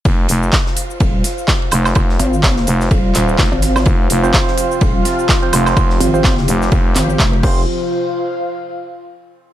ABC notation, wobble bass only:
X:1
M:4/4
L:1/16
Q:"Swing 16ths" 1/4=126
K:Fm
V:1 name="Wobble bass" clef=bass
z8 E,,,2 z6 | z2 A,,,4 z2 E,,,2 z3 A,,,3 | z8 E,,,2 z6 | z2 A,,,4 z4 A,,,2 F,,,2 z2 |
z16 |]